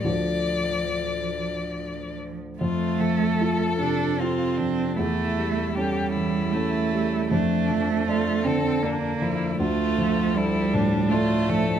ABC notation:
X:1
M:3/4
L:1/16
Q:1/4=77
K:Dm
V:1 name="Violin"
d8- d2 z2 | F2 A6 F2 D2 | E4 G2 E6 | D4 F2 A2 D2 E2 |
F4 E2 D2 F2 A2 |]
V:2 name="Grand piano"
[D,,F,FA]12 | F,,2 F,2 [FA]2 C,2 [FA]2 F,2 | E,,2 G,2 [^CA]2 E,2 [CA]2 G,2 | F,,2 F,2 [DA]2 D,2 [DA]2 F,2 |
D,,2 F,2 [DA]2 A,,2 [DA]2 F,2 |]
V:3 name="Cello"
F,8- F,3 z | A,6 D2 C4 | A,4 G,4 A,4 | A,6 C2 B,4 |
A,4 G,4 A,4 |]